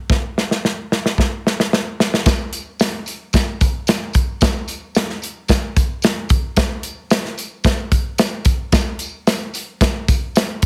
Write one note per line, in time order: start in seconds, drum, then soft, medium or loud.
0.10 kick loud
0.10 snare medium
0.38 snare medium
0.51 snare medium
0.65 snare medium
0.92 snare medium
1.06 snare medium
1.18 kick medium
1.18 snare medium
1.47 snare medium
1.60 snare medium
1.73 snare medium
2.00 snare medium
2.14 snare medium
2.26 kick loud
2.26 snare loud
2.26 closed hi-hat medium
2.26 tambourine medium
2.53 closed hi-hat medium
2.53 tambourine medium
2.80 snare loud
2.80 closed hi-hat medium
2.80 tambourine loud
3.06 closed hi-hat medium
3.06 tambourine medium
3.33 kick medium
3.33 snare medium
3.33 closed hi-hat medium
3.33 tambourine medium
3.61 kick medium
3.61 closed hi-hat medium
3.61 tambourine medium
3.87 snare loud
3.87 closed hi-hat loud
3.87 tambourine loud
4.13 kick medium
4.13 closed hi-hat medium
4.13 tambourine medium
4.41 kick loud
4.41 snare loud
4.41 closed hi-hat medium
4.41 tambourine medium
4.68 closed hi-hat medium
4.68 tambourine medium
4.95 snare loud
4.95 closed hi-hat medium
4.95 tambourine loud
5.10 snare soft
5.22 closed hi-hat medium
5.22 tambourine soft
5.48 kick medium
5.48 snare loud
5.48 closed hi-hat medium
5.48 tambourine loud
5.76 kick medium
5.76 closed hi-hat medium
5.76 tambourine medium
6.02 snare loud
6.02 closed hi-hat medium
6.02 tambourine medium
6.29 kick loud
6.29 closed hi-hat medium
6.29 tambourine medium
6.56 kick loud
6.56 snare loud
6.56 closed hi-hat medium
6.56 tambourine medium
6.83 closed hi-hat medium
6.83 tambourine medium
7.10 snare loud
7.10 closed hi-hat loud
7.10 tambourine medium
7.25 snare soft
7.38 closed hi-hat medium
7.38 tambourine medium
7.64 kick medium
7.64 snare loud
7.64 closed hi-hat medium
7.64 tambourine medium
7.92 kick medium
7.92 closed hi-hat medium
7.92 tambourine medium
8.18 snare loud
8.18 closed hi-hat loud
8.18 tambourine loud
8.45 kick medium
8.45 closed hi-hat medium
8.45 tambourine medium
8.72 kick loud
8.72 snare loud
8.72 closed hi-hat medium
8.72 tambourine loud
8.99 closed hi-hat medium
8.99 tambourine medium
9.27 snare loud
9.27 closed hi-hat loud
9.27 tambourine medium
9.54 closed hi-hat medium
9.54 tambourine medium
9.81 kick medium
9.81 snare loud
9.81 closed hi-hat medium
9.81 tambourine medium
10.08 kick loud
10.08 closed hi-hat medium
10.08 tambourine medium
10.36 snare loud
10.36 closed hi-hat loud
10.36 tambourine loud
10.62 kick medium
10.62 closed hi-hat medium
10.62 tambourine medium